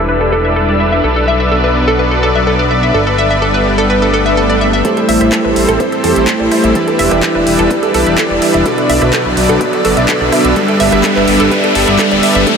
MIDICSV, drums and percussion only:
0, 0, Header, 1, 2, 480
1, 0, Start_track
1, 0, Tempo, 476190
1, 1047, Time_signature, 4, 2, 24, 8
1, 12672, End_track
2, 0, Start_track
2, 0, Title_t, "Drums"
2, 4887, Note_on_c, 9, 36, 117
2, 4887, Note_on_c, 9, 42, 77
2, 4988, Note_off_c, 9, 36, 0
2, 4988, Note_off_c, 9, 42, 0
2, 5010, Note_on_c, 9, 42, 34
2, 5111, Note_off_c, 9, 42, 0
2, 5128, Note_on_c, 9, 46, 99
2, 5228, Note_off_c, 9, 46, 0
2, 5251, Note_on_c, 9, 37, 60
2, 5251, Note_on_c, 9, 42, 52
2, 5352, Note_off_c, 9, 37, 0
2, 5352, Note_off_c, 9, 42, 0
2, 5365, Note_on_c, 9, 39, 120
2, 5367, Note_on_c, 9, 36, 115
2, 5367, Note_on_c, 9, 37, 60
2, 5367, Note_on_c, 9, 42, 76
2, 5466, Note_off_c, 9, 39, 0
2, 5468, Note_off_c, 9, 36, 0
2, 5468, Note_off_c, 9, 37, 0
2, 5468, Note_off_c, 9, 42, 0
2, 5607, Note_on_c, 9, 46, 100
2, 5707, Note_off_c, 9, 46, 0
2, 5731, Note_on_c, 9, 42, 52
2, 5832, Note_off_c, 9, 42, 0
2, 5847, Note_on_c, 9, 36, 120
2, 5848, Note_on_c, 9, 42, 71
2, 5948, Note_off_c, 9, 36, 0
2, 5948, Note_off_c, 9, 42, 0
2, 5971, Note_on_c, 9, 42, 37
2, 6072, Note_off_c, 9, 42, 0
2, 6087, Note_on_c, 9, 46, 94
2, 6188, Note_off_c, 9, 46, 0
2, 6211, Note_on_c, 9, 42, 55
2, 6312, Note_off_c, 9, 42, 0
2, 6325, Note_on_c, 9, 39, 122
2, 6326, Note_on_c, 9, 42, 76
2, 6327, Note_on_c, 9, 36, 112
2, 6425, Note_off_c, 9, 39, 0
2, 6427, Note_off_c, 9, 42, 0
2, 6428, Note_off_c, 9, 36, 0
2, 6567, Note_on_c, 9, 37, 59
2, 6567, Note_on_c, 9, 46, 98
2, 6668, Note_off_c, 9, 37, 0
2, 6668, Note_off_c, 9, 46, 0
2, 6691, Note_on_c, 9, 42, 50
2, 6792, Note_off_c, 9, 42, 0
2, 6807, Note_on_c, 9, 36, 116
2, 6807, Note_on_c, 9, 42, 79
2, 6908, Note_off_c, 9, 36, 0
2, 6908, Note_off_c, 9, 42, 0
2, 6931, Note_on_c, 9, 42, 35
2, 7032, Note_off_c, 9, 42, 0
2, 7047, Note_on_c, 9, 46, 106
2, 7147, Note_off_c, 9, 46, 0
2, 7170, Note_on_c, 9, 37, 64
2, 7170, Note_on_c, 9, 42, 53
2, 7271, Note_off_c, 9, 37, 0
2, 7271, Note_off_c, 9, 42, 0
2, 7286, Note_on_c, 9, 39, 119
2, 7287, Note_on_c, 9, 36, 116
2, 7288, Note_on_c, 9, 37, 58
2, 7288, Note_on_c, 9, 42, 75
2, 7387, Note_off_c, 9, 39, 0
2, 7388, Note_off_c, 9, 36, 0
2, 7388, Note_off_c, 9, 37, 0
2, 7388, Note_off_c, 9, 42, 0
2, 7527, Note_on_c, 9, 46, 102
2, 7628, Note_off_c, 9, 46, 0
2, 7651, Note_on_c, 9, 42, 51
2, 7751, Note_off_c, 9, 42, 0
2, 7767, Note_on_c, 9, 36, 127
2, 7767, Note_on_c, 9, 42, 75
2, 7867, Note_off_c, 9, 36, 0
2, 7868, Note_off_c, 9, 42, 0
2, 7891, Note_on_c, 9, 42, 37
2, 7991, Note_off_c, 9, 42, 0
2, 8007, Note_on_c, 9, 46, 100
2, 8108, Note_off_c, 9, 46, 0
2, 8130, Note_on_c, 9, 42, 51
2, 8231, Note_off_c, 9, 42, 0
2, 8245, Note_on_c, 9, 39, 119
2, 8246, Note_on_c, 9, 36, 118
2, 8247, Note_on_c, 9, 42, 74
2, 8346, Note_off_c, 9, 39, 0
2, 8347, Note_off_c, 9, 36, 0
2, 8347, Note_off_c, 9, 42, 0
2, 8486, Note_on_c, 9, 46, 107
2, 8587, Note_off_c, 9, 46, 0
2, 8610, Note_on_c, 9, 42, 49
2, 8711, Note_off_c, 9, 42, 0
2, 8726, Note_on_c, 9, 36, 121
2, 8726, Note_on_c, 9, 42, 79
2, 8827, Note_off_c, 9, 36, 0
2, 8827, Note_off_c, 9, 42, 0
2, 8850, Note_on_c, 9, 42, 32
2, 8950, Note_off_c, 9, 42, 0
2, 8966, Note_on_c, 9, 46, 105
2, 9067, Note_off_c, 9, 46, 0
2, 9089, Note_on_c, 9, 37, 65
2, 9089, Note_on_c, 9, 42, 50
2, 9190, Note_off_c, 9, 37, 0
2, 9190, Note_off_c, 9, 42, 0
2, 9204, Note_on_c, 9, 39, 121
2, 9206, Note_on_c, 9, 36, 125
2, 9206, Note_on_c, 9, 37, 60
2, 9206, Note_on_c, 9, 42, 78
2, 9305, Note_off_c, 9, 39, 0
2, 9307, Note_off_c, 9, 36, 0
2, 9307, Note_off_c, 9, 37, 0
2, 9307, Note_off_c, 9, 42, 0
2, 9446, Note_on_c, 9, 46, 106
2, 9547, Note_off_c, 9, 46, 0
2, 9569, Note_on_c, 9, 42, 52
2, 9670, Note_off_c, 9, 42, 0
2, 9686, Note_on_c, 9, 36, 126
2, 9686, Note_on_c, 9, 42, 74
2, 9787, Note_off_c, 9, 36, 0
2, 9787, Note_off_c, 9, 42, 0
2, 9809, Note_on_c, 9, 42, 35
2, 9910, Note_off_c, 9, 42, 0
2, 9926, Note_on_c, 9, 46, 105
2, 10027, Note_off_c, 9, 46, 0
2, 10050, Note_on_c, 9, 42, 52
2, 10151, Note_off_c, 9, 42, 0
2, 10165, Note_on_c, 9, 39, 118
2, 10166, Note_on_c, 9, 36, 123
2, 10167, Note_on_c, 9, 42, 78
2, 10266, Note_off_c, 9, 39, 0
2, 10267, Note_off_c, 9, 36, 0
2, 10268, Note_off_c, 9, 42, 0
2, 10407, Note_on_c, 9, 37, 65
2, 10407, Note_on_c, 9, 46, 105
2, 10507, Note_off_c, 9, 37, 0
2, 10507, Note_off_c, 9, 46, 0
2, 10530, Note_on_c, 9, 42, 49
2, 10630, Note_off_c, 9, 42, 0
2, 10647, Note_on_c, 9, 36, 126
2, 10647, Note_on_c, 9, 42, 74
2, 10747, Note_off_c, 9, 36, 0
2, 10748, Note_off_c, 9, 42, 0
2, 10769, Note_on_c, 9, 42, 33
2, 10870, Note_off_c, 9, 42, 0
2, 10886, Note_on_c, 9, 46, 111
2, 10987, Note_off_c, 9, 46, 0
2, 11009, Note_on_c, 9, 37, 70
2, 11009, Note_on_c, 9, 42, 51
2, 11110, Note_off_c, 9, 37, 0
2, 11110, Note_off_c, 9, 42, 0
2, 11124, Note_on_c, 9, 39, 113
2, 11126, Note_on_c, 9, 37, 63
2, 11126, Note_on_c, 9, 42, 77
2, 11127, Note_on_c, 9, 36, 117
2, 11225, Note_off_c, 9, 39, 0
2, 11227, Note_off_c, 9, 37, 0
2, 11227, Note_off_c, 9, 42, 0
2, 11228, Note_off_c, 9, 36, 0
2, 11248, Note_on_c, 9, 39, 32
2, 11349, Note_off_c, 9, 39, 0
2, 11366, Note_on_c, 9, 46, 107
2, 11467, Note_off_c, 9, 46, 0
2, 11490, Note_on_c, 9, 42, 49
2, 11591, Note_off_c, 9, 42, 0
2, 11607, Note_on_c, 9, 36, 125
2, 11607, Note_on_c, 9, 42, 70
2, 11708, Note_off_c, 9, 36, 0
2, 11708, Note_off_c, 9, 42, 0
2, 11731, Note_on_c, 9, 42, 35
2, 11832, Note_off_c, 9, 42, 0
2, 11847, Note_on_c, 9, 46, 102
2, 11948, Note_off_c, 9, 46, 0
2, 11971, Note_on_c, 9, 42, 51
2, 12072, Note_off_c, 9, 42, 0
2, 12085, Note_on_c, 9, 39, 116
2, 12087, Note_on_c, 9, 36, 121
2, 12087, Note_on_c, 9, 42, 71
2, 12186, Note_off_c, 9, 39, 0
2, 12188, Note_off_c, 9, 36, 0
2, 12188, Note_off_c, 9, 42, 0
2, 12211, Note_on_c, 9, 42, 35
2, 12312, Note_off_c, 9, 42, 0
2, 12328, Note_on_c, 9, 46, 106
2, 12428, Note_off_c, 9, 46, 0
2, 12451, Note_on_c, 9, 42, 49
2, 12551, Note_off_c, 9, 42, 0
2, 12567, Note_on_c, 9, 36, 120
2, 12568, Note_on_c, 9, 42, 77
2, 12668, Note_off_c, 9, 36, 0
2, 12669, Note_off_c, 9, 42, 0
2, 12672, End_track
0, 0, End_of_file